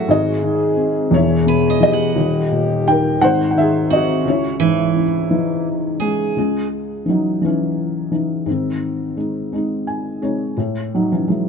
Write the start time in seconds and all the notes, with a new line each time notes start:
Already playing: A1 A2 F#3 A3 F#4 G#4 A4 E5 F#5
0.08 G#1 G#2 G#4 D#5
0.42 D#3
0.77 C4
1.10 E1 E2 G#4 C#5
1.16 E4
1.46 B2 B4
1.70 D#5
1.80 E3 D#5
1.85 G4
1.93 F#5
2.16 D#1 D#2 G4
2.52 A#2
2.87 D#3 A#4 G5
3.20 G#1 G#2 D#4 F#5
3.24 C5
3.51 F#5
3.56 D#3 E5
3.60 G#4
3.90 C4 F#4 D#5
3.96 F#4
4.24 C#2 C#4
4.28 E4 C#5
4.60 G#2 E3
4.93 C#3 E4
5.29 E3 D#4
6.00 G#3 C#4 G#4
6.36 C#2 C#3 G#3
7.06 E3 F#3 C#4 D#4
7.10 D#4
7.42 E3 C#4 D#4
7.46 C#4
8.12 E3 C#4 D#4
8.46 G#2 D#3 C4
9.17 G#3 C4 D#4
9.53 G#3 C4 D#4
9.87 G#5
10.22 C3 G#3 D#4 C#5
10.58 A2
10.94 F#3 D#4
11.12 E3 C#4
11.27 E3 F#3 G#3 C#4